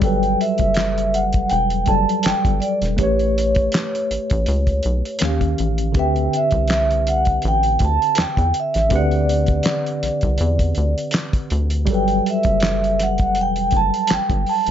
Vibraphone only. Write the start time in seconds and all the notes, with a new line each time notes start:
0.04 G5
0.41 E5
1.15 F#5
1.50 G5
1.88 A5
2.25 G5
2.60 D5
2.98 C#5
5.99 G5
6.36 E5
7.09 F#5
7.48 G5
7.85 A5
8.21 G5
8.60 E5
8.96 D5
11.94 G5
12.30 E5
13.03 F#5
13.41 G5
13.77 A5
14.13 G5
14.49 A5